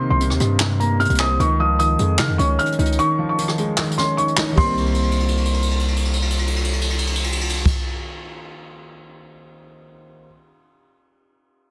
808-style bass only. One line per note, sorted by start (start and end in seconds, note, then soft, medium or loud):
0.11 0.32 C2 loud
0.30 0.40 D#2 loud
0.40 1.07 G2 loud
1.10 1.39 C2 loud
1.40 1.97 C#2 loud
1.99 2.21 F2 loud
2.19 2.31 C#3 loud
2.29 2.39 F2 loud
2.39 2.58 C#2 loud
2.79 2.99 C#2 loud
4.58 7.69 C2 loud